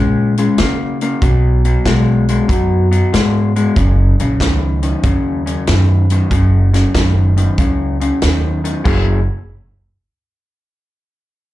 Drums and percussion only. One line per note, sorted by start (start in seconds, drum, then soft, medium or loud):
0.37 closed hi-hat medium
0.58 snare loud
0.58 closed hi-hat medium
1.01 closed hi-hat medium
1.22 kick loud
1.22 closed hi-hat medium
1.65 closed hi-hat medium
1.85 kick medium
1.85 snare loud
1.85 closed hi-hat medium
2.29 closed hi-hat medium
2.49 kick loud
2.49 closed hi-hat medium
2.92 closed hi-hat medium
3.14 snare loud
3.14 closed hi-hat medium
3.56 closed hi-hat medium
3.76 kick loud
3.76 closed hi-hat medium
4.20 closed hi-hat medium
4.40 kick medium
4.40 snare loud
4.40 closed hi-hat medium
4.83 closed hi-hat medium
5.03 kick loud
5.03 closed hi-hat medium
5.47 closed hi-hat medium
5.67 snare loud
5.67 closed hi-hat medium
6.10 closed hi-hat medium
6.31 kick loud
6.31 closed hi-hat medium
6.74 snare soft
6.74 closed hi-hat medium
6.94 kick medium
6.94 snare loud
6.94 closed hi-hat medium
7.37 closed hi-hat medium
7.58 kick loud
7.58 closed hi-hat medium
8.01 closed hi-hat medium
8.22 snare loud
8.22 closed hi-hat medium
8.65 closed hi-hat medium
8.85 kick loud
8.85 crash medium